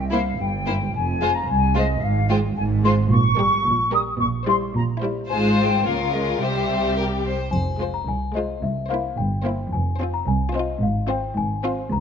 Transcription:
0.00 0.29 C2 soft
0.00 0.30 C2 soft
0.11 0.20 A#3 soft
0.11 0.20 E4 soft
0.11 0.20 C5 soft
0.11 0.38 F5 medium
0.38 0.84 G1 soft
0.38 0.84 G2 soft
0.38 0.92 G5 medium
0.65 0.74 A#3 soft
0.65 0.75 E4 soft
0.65 0.73 C5 soft
0.93 1.39 F1 soft
0.93 1.39 F2 soft
0.93 1.33 G#5 medium
1.21 1.29 G#3 soft
1.21 1.29 F4 soft
1.21 1.30 C5 soft
1.34 1.48 A#5 medium
1.48 1.93 C2 soft
1.48 1.74 G#5 medium
1.75 1.83 G#3 soft
1.75 1.83 F4 soft
1.75 1.85 C5 soft
1.75 2.02 D#5 medium
2.02 2.47 G#1 medium
2.02 2.47 G#2 medium
2.02 2.29 F5 medium
2.29 2.38 G#3 soft
2.29 2.38 F4 soft
2.29 2.38 C5 soft
2.29 2.35 G5 medium
2.56 3.02 G#1 soft
2.56 3.02 G#2 medium
2.56 2.62 G#5 medium
2.84 2.92 G#3 soft
2.84 2.92 F4 soft
2.84 2.93 C5 soft
2.84 2.90 C6 medium
3.10 3.54 A#1 medium
3.10 3.54 A#2 medium
3.10 3.91 C#6 medium
3.38 3.59 G3 soft
3.38 3.58 G4 medium
3.38 3.58 A#4 soft
3.66 4.09 A#1 medium
3.66 4.09 A#2 medium
3.93 4.13 G3 soft
3.93 4.13 G4 soft
3.93 4.13 A#4 soft
3.93 3.99 D#6 medium
4.19 4.63 A#1 medium
4.19 4.63 A#2 medium
4.19 4.25 C#6 medium
4.47 4.68 G3 soft
4.47 4.68 E4 medium
4.47 4.67 C5 soft
4.47 4.54 C6 medium
4.75 5.18 A#1 medium
4.75 5.18 A#2 medium
4.75 4.81 A#5 medium
5.01 5.23 G3 soft
5.01 5.22 E4 soft
5.01 5.22 C5 soft
5.29 5.81 G#1 soft
5.29 5.81 G#2 soft
5.29 5.82 G#3 soft
5.29 5.81 F4 soft
5.29 5.81 C5 soft
5.29 5.36 G#5 medium
5.58 5.85 G5 medium
5.85 6.40 C#2 soft
5.85 6.40 C#3 soft
5.85 5.93 A#3 soft
5.85 6.40 F4 soft
5.85 6.41 A#4 soft
5.85 6.13 F5 medium
6.13 6.41 G#3 soft
6.13 6.34 D#5 soft
6.34 6.41 F5 soft
6.41 7.31 C2 soft
6.41 7.31 C3 soft
6.41 7.33 G3 soft
6.41 7.33 G4 soft
6.41 6.92 C5 soft
6.41 6.97 E5 soft
6.96 7.04 A#4 soft
7.25 7.52 C5 soft
7.51 7.97 F1 medium
7.51 7.96 F2 medium
7.51 7.91 G#5 medium
7.51 triangle soft
7.80 8.01 G#3 soft
7.80 8.01 F4 soft
7.80 8.01 C5 soft
7.94 8.07 A#5 medium
8.08 8.52 C2 medium
8.08 8.52 C2 soft
8.08 8.34 G#5 medium
8.35 8.56 G#3 soft
8.35 8.56 F4 soft
8.35 8.56 C5 soft
8.35 8.61 D#5 soft
8.63 9.07 C2 medium
8.63 8.89 E5 soft
8.90 9.11 A#3 soft
8.90 9.11 E4 soft
8.90 9.11 C5 soft
8.90 9.16 F5 medium
9.17 9.62 G1 soft
9.17 9.62 G2 soft
9.17 9.69 G5 medium
9.45 9.66 A#3 soft
9.45 9.66 E4 soft
9.45 9.66 C5 soft
9.73 10.17 F1 medium
9.73 10.16 F2 medium
9.73 10.11 G#5 medium
10.00 10.21 C4 soft
10.00 10.21 F4 soft
10.00 10.21 C5 soft
10.14 10.27 A#5 medium
10.27 10.71 C2 medium
10.27 10.53 G#5 medium
10.53 10.75 C4 soft
10.53 10.75 F4 soft
10.53 10.76 C5 soft
10.53 10.81 D#5 medium
10.82 11.26 G#1 medium
10.82 11.26 G#2 medium
10.82 11.08 F5 soft
11.09 11.30 C4 soft
11.09 11.30 F4 soft
11.09 11.31 C5 medium
11.09 11.36 G5 medium
11.37 11.81 G#1 medium
11.37 11.81 G#2 medium
11.37 11.89 G#5 medium
11.64 11.85 C4 soft
11.64 11.85 F4 medium
11.64 11.85 C5 soft
11.92 12.00 C#2 medium
11.92 12.00 A#5 medium

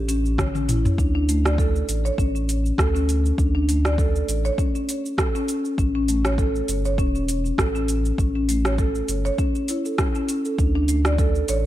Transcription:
0.00 0.88 A1 medium
0.09 0.18 C#4 loud
0.09 open hi-hat medium
0.09 cabasa medium
0.26 cabasa soft
0.38 0.53 C#5 medium
0.38 kick loud
0.38 cross-stick medium
0.38 high tom medium
0.38 cabasa soft
0.55 0.68 C#4 medium
0.55 high tom medium
0.55 cabasa soft
0.68 0.97 E4 medium
0.68 open hi-hat medium
0.68 mid tom medium
0.68 cabasa medium
0.85 mid tom medium
0.85 cabasa soft
0.98 1.82 D2 medium
0.98 1.08 D4 medium
0.98 kick medium
0.98 cabasa soft
1.15 1.28 D4 loud
1.29 1.43 A3 medium
1.29 open hi-hat medium
1.29 cabasa medium
1.45 1.58 D5 medium
1.45 cross-stick medium
1.45 cabasa soft
1.58 1.74 A4 loud
1.58 kick loud
1.58 cabasa soft
1.76 cabasa soft
1.89 2.11 A1 medium
1.89 open hi-hat medium
1.89 cabasa medium
2.05 2.17 C#5 medium
2.05 cabasa soft
2.18 2.72 A1 loud
2.18 2.28 C#4 loud
2.18 kick loud
2.18 cabasa soft
2.35 2.48 C#4 medium
2.35 cabasa soft
2.49 open hi-hat medium
2.49 cabasa medium
2.66 cabasa soft
2.78 3.32 D2 loud
2.78 2.94 A4 loud
2.78 kick loud
2.78 cross-stick medium
2.78 cabasa soft
2.95 3.08 C#4 medium
2.95 cabasa soft
3.09 open hi-hat medium
3.09 cabasa medium
3.26 cabasa soft
3.38 4.22 D2 medium
3.38 3.48 D4 medium
3.38 kick loud
3.38 cabasa soft
3.55 3.68 D4 loud
3.69 3.83 A3 medium
3.69 open hi-hat medium
3.69 cabasa medium
3.85 3.98 D5 loud
3.85 cross-stick medium
3.85 cabasa soft
3.98 4.14 A4 loud
3.98 kick loud
3.98 cabasa soft
4.16 cabasa soft
4.28 4.51 A1 medium
4.28 open hi-hat medium
4.28 cabasa medium
4.45 4.57 C#5 loud
4.45 cabasa soft
4.58 4.68 C#4 medium
4.58 kick loud
4.58 cabasa soft
4.75 4.88 C#4 medium
4.75 cabasa soft
4.89 open hi-hat medium
4.89 cabasa medium
5.06 cabasa soft
5.18 5.34 A4 medium
5.18 kick loud
5.18 cross-stick medium
5.18 cabasa soft
5.35 5.48 C#4 loud
5.35 cabasa soft
5.48 open hi-hat medium
5.48 cabasa medium
5.65 cabasa soft
5.78 6.62 A1 loud
5.78 5.88 C#4 medium
5.78 kick loud
5.78 cabasa soft
5.95 6.08 C#4 medium
6.08 6.23 A3 medium
6.08 open hi-hat medium
6.08 cabasa medium
6.25 6.38 C#5 loud
6.25 cross-stick medium
6.25 cabasa soft
6.38 6.54 A4 loud
6.38 kick loud
6.38 cabasa soft
6.56 cabasa soft
6.68 7.00 G1 medium
6.68 open hi-hat medium
6.68 cabasa medium
6.85 6.97 C#5 loud
6.85 cabasa soft
6.98 7.52 E1 loud
6.98 7.08 C#4 loud
6.98 kick loud
6.98 cabasa soft
7.15 7.28 C#4 medium
7.15 cabasa soft
7.28 open hi-hat medium
7.28 cabasa medium
7.45 cabasa soft
7.58 8.12 A1 loud
7.58 7.74 A4 loud
7.58 kick loud
7.58 cross-stick medium
7.58 cabasa soft
7.75 7.88 C#4 loud
7.75 cabasa soft
7.88 open hi-hat medium
7.88 cabasa medium
8.05 cabasa soft
8.18 9.02 A1 loud
8.18 8.28 C#4 medium
8.18 kick loud
8.18 cabasa soft
8.36 8.48 C#4 medium
8.49 8.63 A3 medium
8.49 open hi-hat medium
8.49 cabasa medium
8.65 8.78 C#5 medium
8.65 cross-stick medium
8.65 cabasa soft
8.78 8.94 A4 loud
8.78 kick loud
8.78 cabasa soft
8.95 cabasa soft
9.08 9.31 G1 medium
9.08 open hi-hat medium
9.08 cabasa medium
9.25 9.37 C#5 loud
9.25 cabasa soft
9.38 9.48 C#4 loud
9.38 kick loud
9.38 cabasa soft
9.55 9.68 C#4 medium
9.55 cabasa soft
9.68 9.78 E4 medium
9.68 open hi-hat medium
9.68 cabasa medium
9.85 9.97 A4 medium
9.85 cabasa soft
9.98 10.14 C#4 medium
9.98 kick loud
9.98 cross-stick medium
9.98 cabasa soft
10.15 10.28 C#4 medium
10.15 cabasa soft
10.28 10.44 C#4 medium
10.28 open hi-hat medium
10.28 cabasa medium
10.45 10.58 A4 medium
10.45 cabasa soft
10.58 11.42 D2 medium
10.58 10.68 D4 medium
10.58 kick loud
10.58 cabasa soft
10.75 10.88 D4 loud
10.88 11.04 A3 medium
10.88 open hi-hat medium
10.88 cabasa medium
11.05 11.18 D5 medium
11.05 cross-stick medium
11.05 cabasa soft
11.18 11.34 A4 loud
11.18 kick loud
11.18 cabasa soft
11.35 cabasa soft
11.48 11.66 A1 medium
11.48 11.66 C#5 loud
11.48 open hi-hat medium
11.48 cabasa medium

